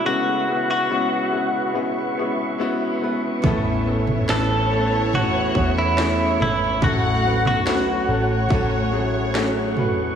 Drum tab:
SD |----------------|----o-------o---|----o-------o---|
FT |----------------|o--o----o-----o-|o--o----o-----o-|
BD |----------------|o---------o-----|o-------o-------|